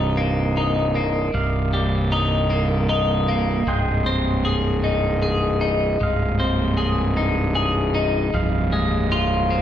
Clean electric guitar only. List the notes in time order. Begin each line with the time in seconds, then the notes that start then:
Already playing: C2 G3 D#4
0.17 A#3
0.57 D#4
0.95 A#3
1.34 C2
1.73 G3
2.12 D#4
2.50 A#3
2.89 D#4
3.29 A#3
3.67 G#2
4.06 C4
4.45 G#4
4.84 D#4
5.23 G#4
5.61 D#4
6.01 G#2
6.40 C4
6.77 G#4
7.17 D#4
7.55 G#4
7.95 D#4
8.34 F2
8.72 G#3
9.12 F4
9.50 C4